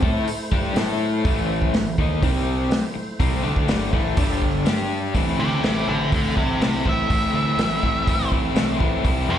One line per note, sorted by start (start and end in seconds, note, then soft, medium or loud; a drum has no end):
0.03 0.25 A2 medium
0.03 0.26 A3 medium
0.03 2.21 A3 medium
0.03 0.27 E4 medium
0.03 2.22 E4 medium
0.03 0.27 A4 medium
0.03 2.21 C5 medium
0.03 kick loud
0.27 muted fingered electric bass stroke soft
0.27 muted overdriven electric guitar stroke medium
0.27 open hi-hat medium
0.52 0.74 G2 medium
0.52 0.75 G3 medium
0.52 0.76 D4 loud
0.52 0.76 G4 medium
0.52 kick medium
0.76 1.21 A2 medium
0.76 1.24 A3 medium
0.76 1.25 E4 loud
0.76 1.25 A4 loud
0.76 snare loud
0.76 open hi-hat medium
1.25 1.70 A1 loud
1.25 1.73 A2 medium
1.25 1.74 E3 loud
1.25 1.74 A3 loud
1.25 kick loud
1.25 open hi-hat medium
1.62 kick medium
1.74 1.96 A1 medium
1.74 1.94 A2 medium
1.74 1.94 E3 medium
1.74 snare loud
1.74 open hi-hat medium
1.98 2.21 D#2 medium
1.98 2.22 D#3 medium
1.98 2.23 A#3 medium
1.98 2.23 D#4 medium
1.98 kick medium
2.22 2.68 C2 medium
2.22 2.71 C3 medium
2.22 2.71 G3 medium
2.22 2.71 C4 medium
2.22 2.71 C5 medium
2.22 kick loud
2.22 open hi-hat medium
2.71 4.17 A3 medium
2.71 4.17 E4 medium
2.71 4.17 C5 medium
2.71 muted overdriven electric guitar stroke medium
2.71 muted fingered electric bass stroke soft
2.71 snare loud
2.71 open hi-hat medium
2.95 muted overdriven electric guitar stroke medium
2.95 muted fingered electric bass stroke soft
3.20 3.43 C2 medium
3.20 3.42 C3 medium
3.20 3.43 G3 loud
3.20 3.44 C4 loud
3.20 kick loud
3.20 open hi-hat medium
3.43 3.68 D2 loud
3.43 3.67 D3 medium
3.43 3.68 A3 medium
3.43 3.68 D4 medium
3.56 kick medium
3.68 3.92 G1 medium
3.68 3.92 G2 loud
3.68 3.92 D3 loud
3.68 3.92 G3 loud
3.68 snare loud
3.68 open hi-hat medium
3.92 4.16 A1 medium
3.92 4.17 A2 medium
3.92 4.17 E3 medium
3.92 4.17 A3 medium
3.92 kick medium
4.17 4.63 G1 medium
4.17 4.66 G2 medium
4.17 4.66 D3 medium
4.17 5.15 G3 medium
4.17 4.65 G3 loud
4.17 5.15 D4 medium
4.17 5.15 D5 medium
4.17 kick loud
4.17 open hi-hat medium
4.42 kick medium
4.66 5.12 G2 medium
4.66 5.14 G3 medium
4.66 5.15 D4 medium
4.66 5.15 G4 loud
4.66 snare loud
4.66 open hi-hat medium
5.14 5.33 A1 medium
5.14 5.38 A2 medium
5.14 5.39 E3 medium
5.14 5.40 A3 loud
5.14 5.40 C4 loud
5.14 5.40 E4 loud
5.14 kick medium
5.14 open hi-hat medium
5.39 5.58 D2 medium
5.39 5.62 A2 medium
5.39 5.63 E3 medium
5.39 5.63 A3 medium
5.39 5.64 C4 medium
5.39 5.65 E4 medium
5.39 5.63 C5 medium
5.39 5.63 E5 medium
5.63 5.82 A1 medium
5.63 5.87 A2 medium
5.63 5.87 E3 medium
5.63 5.88 A3 medium
5.63 5.89 C4 loud
5.63 5.89 E4 loud
5.63 5.87 C5 medium
5.63 5.88 E5 medium
5.63 snare medium
5.63 open hi-hat soft
5.87 6.06 A1 medium
5.87 6.10 A2 medium
5.87 6.11 E3 medium
5.87 6.11 A3 medium
5.87 6.12 C4 medium
5.87 6.13 E4 medium
5.87 6.11 A4 medium
5.87 6.12 D5 medium
6.11 6.31 A1 medium
6.11 6.35 A2 medium
6.11 6.36 E3 medium
6.11 6.36 A3 medium
6.11 6.37 C4 medium
6.11 6.38 E4 loud
6.11 6.36 A4 medium
6.11 6.37 D5 medium
6.11 kick loud
6.11 open hi-hat medium
6.36 6.55 A1 medium
6.36 6.59 A2 medium
6.36 6.61 E3 medium
6.36 6.61 A3 medium
6.36 6.62 C4 medium
6.36 6.62 E4 medium
6.36 6.60 G4 medium
6.36 6.61 C5 medium
6.36 kick medium
6.60 6.79 C2 medium
6.60 6.84 A2 medium
6.60 6.85 E3 medium
6.60 6.85 A3 medium
6.60 6.86 C4 medium
6.60 6.87 E4 loud
6.60 6.85 G4 medium
6.60 6.86 C5 medium
6.60 snare loud
6.60 open hi-hat medium
6.85 7.04 A1 medium
6.85 7.07 A2 medium
6.85 7.09 E3 medium
6.85 7.09 A3 medium
6.85 7.10 C4 medium
6.85 7.11 E4 medium
6.85 8.29 E5 medium
6.85 kick medium
7.09 7.28 A1 medium
7.09 7.33 A2 loud
7.09 7.34 E3 medium
7.09 7.34 A3 loud
7.09 7.35 C4 loud
7.09 7.36 E4 loud
7.09 kick loud
7.09 open hi-hat medium
7.33 7.52 D2 medium
7.33 7.58 A2 medium
7.33 7.59 E3 medium
7.33 7.59 A3 medium
7.33 7.60 C4 medium
7.33 7.61 E4 medium
7.58 7.76 A1 medium
7.58 7.81 A2 medium
7.58 7.83 E3 medium
7.58 7.82 A3 medium
7.58 7.83 C4 loud
7.58 7.84 E4 loud
7.58 snare loud
7.58 open hi-hat medium
7.82 8.01 A1 medium
7.82 8.06 A2 medium
7.82 8.07 E3 medium
7.82 8.07 A3 medium
7.82 8.08 C4 medium
7.82 8.08 E4 medium
7.82 kick medium
8.07 8.26 A1 medium
8.07 8.30 A2 medium
8.07 8.31 E3 medium
8.07 8.32 A3 medium
8.07 8.32 C4 medium
8.07 8.33 E4 medium
8.07 kick loud
8.07 open hi-hat medium
8.31 8.50 A1 medium
8.31 8.54 A2 medium
8.31 8.55 E3 medium
8.31 8.56 A3 medium
8.31 8.56 C4 medium
8.31 8.57 E4 medium
8.31 kick medium
8.55 8.74 C2 medium
8.55 8.79 A2 medium
8.55 8.79 E3 medium
8.55 8.80 A3 loud
8.55 8.80 C4 medium
8.55 8.81 E4 medium
8.55 snare loud
8.55 open hi-hat medium
8.80 8.99 A1 medium
8.80 9.03 A2 medium
8.80 9.03 E3 medium
8.80 9.03 A3 medium
8.80 9.04 C4 medium
8.80 9.04 E4 medium
8.80 kick medium
9.04 9.23 C2 medium
9.04 9.27 C3 medium
9.04 9.28 E3 loud
9.04 9.29 G3 medium
9.04 9.29 C4 loud
9.04 9.29 E4 loud
9.04 kick loud
9.04 open hi-hat soft
9.28 9.39 F2 medium
9.28 9.39 C3 medium
9.28 9.39 E3 medium
9.28 9.39 G3 medium
9.28 9.39 C4 medium
9.28 9.39 E4 medium
9.28 9.39 C5 medium
9.28 9.39 E5 loud